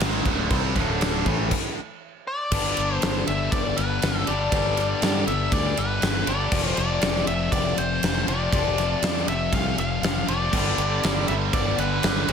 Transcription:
0.00 G#1 G#2 D#3 G#3, snare, crash
0.26 D1 D2 A2 D3, kick, crash
0.51 C2 C3 G3 C4, kick, crash
0.76 D1 D2 A2 D3, kick, snare, crash
1.01 snare, crash
1.26 A1 A2 E3 A3, kick, crash
1.51 kick, crash
2.27 D5
2.51 G1 G2 D3 G3 B3 D4 G4, kick, crash
2.77 G1, ride
2.94 C5
3.02 G1, snare, ride
3.27 G1 E5, ride
3.52 G1 D5, kick, ride
3.77 G1 B4, ride
4.02 G1, snare, ride
4.26 G1 G2 D3 G3 B3 D4 G4 D5, ride
4.51 G1 G2 D3 G3 B3 D4 G4, kick, ride
4.77 snare, ride
5.02 G2, snare, ride
5.27 G1 E5, ride
5.52 D2 D5, kick, ride
5.77 G1 B4, ride
6.02 G1, snare, ride
6.26 G1 G2 D3 G3 B3 D4 G4 D5, ride
6.50 F1 F2 C3 F3 A3 C4 F4, kick, crash
6.77 F1 D5, snare, ride
7.02 F1, snare, ride
7.16 snare
7.27 F1 E5, ride
7.52 F1 D5, kick, ride
7.78 F1 C5, ride
8.03 F1, snare, ride
8.26 F1 F2 C3 F3 A3 C4 F4 D5, ride
8.52 F1 F2 C3 F3 A3 C4 F4, kick, ride
8.78 snare, ride
9.02 F2, snare, ride
9.17 snare
9.27 F1 E5, ride
9.53 C2 F5, kick, ride
9.78 F1 F5, ride
10.02 F1, snare, ride
10.27 F1 F2 C3 F3 A3 C4 F4 D5, ride
10.53 G1 G2 D3 G3 B3 D4 G4, kick, crash
10.78 G1, ride
11.03 G1, snare, ride
11.27 G1 G2 D3 G3 E5, ride
11.53 G1 D5, kick, ride
11.78 G1 B4, ride
12.03 G1 G2 D3 G3, snare, ride
12.28 G1 D3 G3 D4 G4 D5, ride

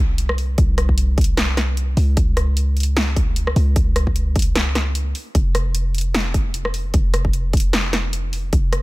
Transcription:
Already playing: C2
0.18 closed hi-hat
0.29 cross-stick
0.38 open hi-hat
0.58 C2, kick, closed hi-hat
0.78 cross-stick, closed hi-hat
0.89 kick
0.98 closed hi-hat
1.18 kick, closed hi-hat
1.21 closed hi-hat
1.24 closed hi-hat
1.37 cross-stick, snare, closed hi-hat
1.57 cross-stick, snare, closed hi-hat
1.77 closed hi-hat
1.97 C#2, open hi-hat
2.17 kick, closed hi-hat
2.37 cross-stick, closed hi-hat
2.57 closed hi-hat
2.77 closed hi-hat
2.80 closed hi-hat
2.83 closed hi-hat
2.97 snare, closed hi-hat
3.16 kick, closed hi-hat
3.36 closed hi-hat
3.47 cross-stick
3.56 C#2, open hi-hat
3.76 kick, closed hi-hat
3.96 cross-stick, closed hi-hat
4.07 kick
4.16 closed hi-hat
4.36 kick, closed hi-hat
4.39 closed hi-hat
4.42 closed hi-hat
4.56 cross-stick, snare, closed hi-hat
4.75 cross-stick, snare, closed hi-hat
4.95 closed hi-hat
5.15 open hi-hat
5.35 F1, kick, closed hi-hat
5.55 cross-stick, closed hi-hat
5.75 closed hi-hat
5.95 closed hi-hat
5.98 closed hi-hat
6.01 closed hi-hat
6.14 snare, closed hi-hat
6.34 kick, closed hi-hat
6.54 closed hi-hat
6.65 cross-stick
6.74 open hi-hat
6.94 F1, kick, closed hi-hat
7.14 cross-stick, closed hi-hat
7.25 kick
7.33 closed hi-hat
7.53 kick, closed hi-hat
7.57 closed hi-hat
7.60 closed hi-hat
7.73 cross-stick, snare, closed hi-hat
7.93 cross-stick, snare, closed hi-hat
8.13 closed hi-hat
8.33 open hi-hat
8.53 F1, kick, closed hi-hat
8.73 cross-stick, closed hi-hat

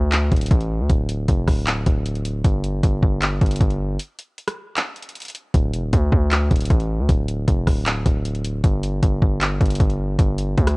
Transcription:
Already playing: D2
0.12 clap, closed hi-hat
0.32 D1, kick, closed hi-hat
0.36 closed hi-hat
0.41 closed hi-hat
0.46 closed hi-hat
0.51 A1, kick, closed hi-hat
0.61 closed hi-hat
0.80 D2
0.90 D1, kick, closed hi-hat
1.09 closed hi-hat
1.28 F1, kick, closed hi-hat
1.48 D1, kick, cross-stick, open hi-hat
1.67 clap, closed hi-hat
1.86 D1, kick, closed hi-hat
2.06 closed hi-hat
2.15 closed hi-hat
2.25 closed hi-hat
2.44 G1, kick, closed hi-hat
2.64 closed hi-hat
2.83 G1, kick, closed hi-hat
3.03 G1, kick
3.22 clap, closed hi-hat
3.41 G1, kick, closed hi-hat
3.46 closed hi-hat
3.51 closed hi-hat
3.56 closed hi-hat
3.61 G1, kick, closed hi-hat
3.70 closed hi-hat
3.99 closed hi-hat
4.19 closed hi-hat
4.38 closed hi-hat
4.48 cross-stick, closed hi-hat
4.77 clap, closed hi-hat
4.96 closed hi-hat
5.03 closed hi-hat
5.09 closed hi-hat
5.15 closed hi-hat
5.20 closed hi-hat
5.22 closed hi-hat
5.25 closed hi-hat
5.28 closed hi-hat
5.30 closed hi-hat
5.35 closed hi-hat
5.54 D1, kick, closed hi-hat
5.73 F1, closed hi-hat
5.83 D1
5.93 D2, kick, closed hi-hat
6.12 D2, kick
6.31 clap, closed hi-hat
6.51 D1, kick, closed hi-hat
6.56 closed hi-hat
6.61 closed hi-hat
6.65 closed hi-hat
6.70 A1, kick, closed hi-hat
6.80 closed hi-hat
6.99 D2
7.09 D1, kick, closed hi-hat
7.28 closed hi-hat
7.48 F1, kick, closed hi-hat
7.67 D1, kick, cross-stick, open hi-hat
7.86 clap, closed hi-hat
8.06 D1, kick, closed hi-hat
8.25 closed hi-hat
8.35 closed hi-hat
8.44 closed hi-hat
8.64 G1, kick, closed hi-hat
8.83 closed hi-hat
9.03 G1, kick, closed hi-hat
9.22 G1, kick
9.41 clap, closed hi-hat
9.61 G1, kick, closed hi-hat
9.65 closed hi-hat
9.70 closed hi-hat
9.75 closed hi-hat
9.80 G1, kick, closed hi-hat
9.90 closed hi-hat
10.19 G1, kick, closed hi-hat
10.38 closed hi-hat
10.57 D2, kick, closed hi-hat
10.67 cross-stick, closed hi-hat

